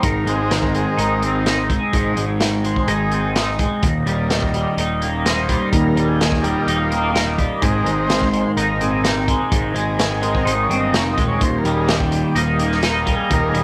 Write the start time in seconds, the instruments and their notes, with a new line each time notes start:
Already playing: clean electric guitar D#4
0.03 picked electric bass G#1, clean electric guitar G#2, transistor combo organ A#4, kick, closed hi-hat
0.25 picked electric bass G#1, clean electric guitar G#3, transistor combo organ G#3 C4 D#4, closed hi-hat
0.36 transistor combo organ G#4
0.50 clean electric guitar D#3, transistor combo organ A#4, snare, closed hi-hat
0.63 kick
0.74 clean electric guitar G#3, transistor combo organ G#4, closed hi-hat
0.98 picked electric bass G#1, clean electric guitar D#4, transistor combo organ A#4, closed hi-hat
1.21 clean electric guitar C4, closed hi-hat
1.46 transistor combo organ G#3 C4 D#4, clean electric guitar D#4, snare, closed hi-hat
1.69 clean electric guitar G#3, kick, closed hi-hat
1.93 picked electric bass G#1, clean electric guitar G#2, transistor combo organ G#3 C4 D#4, kick, closed hi-hat
2.17 picked electric bass G#1, clean electric guitar G#3, closed hi-hat
2.40 clean electric guitar D#3, snare, closed hi-hat
2.64 clean electric guitar G#3, transistor combo organ C5, closed hi-hat
2.76 kick
2.88 picked electric bass G#1, clean electric guitar D#4, transistor combo organ G#4, closed hi-hat
3.11 clean electric guitar C4, closed hi-hat
3.36 transistor combo organ D#4, clean electric guitar D#4, snare, closed hi-hat
3.59 clean electric guitar G#3, kick, closed hi-hat
3.83 picked electric bass D#1, clean electric guitar D#2, tanpura A#2, kick, closed hi-hat
4.06 picked electric bass D#1, clean electric guitar G3, transistor combo organ G3 A#3 D#4, closed hi-hat
4.30 clean electric guitar D#3, snare, closed hi-hat
4.42 kick
4.47 tanpura D#3
4.54 clean electric guitar G3, closed hi-hat
4.77 picked electric bass D#1, clean electric guitar D#4, closed hi-hat
5.01 clean electric guitar A#3, closed hi-hat
5.08 tanpura D#3
5.25 clean electric guitar D#4, transistor combo organ C5, snare, closed hi-hat
5.49 clean electric guitar G3, kick, closed hi-hat
5.67 tanpura D#2
5.72 picked electric bass D#1, clean electric guitar D#2, transistor combo organ A#4, kick, closed hi-hat
5.96 picked electric bass D#1, clean electric guitar G3, closed hi-hat
6.08 transistor combo organ G#4
6.20 clean electric guitar D#3, snare, closed hi-hat
6.31 tanpura A#2, kick, snare
6.41 transistor combo organ G3 A#3 D#4 G4, clean electric guitar G3, closed hi-hat
6.67 picked electric bass D#1, clean electric guitar D#4, closed hi-hat
6.76 transistor combo organ F4
6.90 tanpura D#3, clean electric guitar A#3, closed hi-hat
7.14 clean electric guitar D#4, snare, closed hi-hat
7.38 clean electric guitar G3, kick, closed hi-hat
7.52 tanpura D#3
7.61 picked electric bass G#1, clean electric guitar G#2, transistor combo organ G#3 C4 D#4 G#4, kick, closed hi-hat
7.84 picked electric bass G#1, clean electric guitar G#3, transistor combo organ A#4, closed hi-hat
8.07 clean electric guitar D#3, transistor combo organ C5, snare, closed hi-hat
8.14 tanpura D#2
8.21 kick, snare
8.33 clean electric guitar G#3, closed hi-hat
8.57 picked electric bass G#1, clean electric guitar D#4, transistor combo organ A#4, closed hi-hat
8.75 tanpura A#2
8.81 clean electric guitar C4, transistor combo organ G#4, closed hi-hat
9.04 clean electric guitar D#4, transistor combo organ G4, snare, closed hi-hat
9.28 clean electric guitar G#3, kick, closed hi-hat
9.39 tanpura D#3
9.52 picked electric bass G#1, clean electric guitar G#2, kick, closed hi-hat
9.74 picked electric bass G#1, clean electric guitar G#3, transistor combo organ G#4, closed hi-hat
9.98 clean electric guitar D#3, tanpura D#3, snare, closed hi-hat
10.22 clean electric guitar G#3, transistor combo organ G#3 C4 D#4 A#4, closed hi-hat
10.35 kick
10.45 picked electric bass G#1, clean electric guitar D#4, transistor combo organ C5, closed hi-hat
10.60 tanpura D#2, transistor combo organ C#5
10.69 picked electric bass G1, clean electric guitar C4, closed hi-hat
10.80 transistor combo organ D#5
10.93 picked electric bass F1, clean electric guitar D#4, snare, closed hi-hat
10.98 transistor combo organ C#5
11.13 clean electric guitar G#3, transistor combo organ D#5
11.18 picked electric bass D#1, kick, closed hi-hat
11.22 tanpura A#2
11.28 transistor combo organ C#5
11.41 picked electric bass D#1, clean electric guitar D#2, transistor combo organ C5, kick, closed hi-hat
11.58 transistor combo organ A#4
11.64 picked electric bass D#1, clean electric guitar G3, transistor combo organ G3 A#3 D#4, closed hi-hat
11.75 transistor combo organ G#4
11.85 tanpura D#3, clean electric guitar D#3, snare, closed hi-hat
11.90 transistor combo organ G4
12.00 kick
12.12 clean electric guitar G3, closed hi-hat
12.35 picked electric bass D#1, clean electric guitar D#4, transistor combo organ F4, closed hi-hat
12.47 tanpura D#3
12.59 transistor combo organ G3 A#3 D#4, clean electric guitar A#3, closed hi-hat
12.72 snare
12.83 clean electric guitar D#4, transistor combo organ A#4, snare, closed hi-hat
13.06 tanpura D#2, clean electric guitar G3, kick, closed hi-hat
13.12 transistor combo organ A#4
13.16 transistor combo organ G#4
13.30 picked electric bass D#1, clean electric guitar D#2, transistor combo organ G3 A#3 D#4 A#4, kick, closed hi-hat
13.49 transistor combo organ G#4
13.54 picked electric bass D#1, clean electric guitar G3, closed hi-hat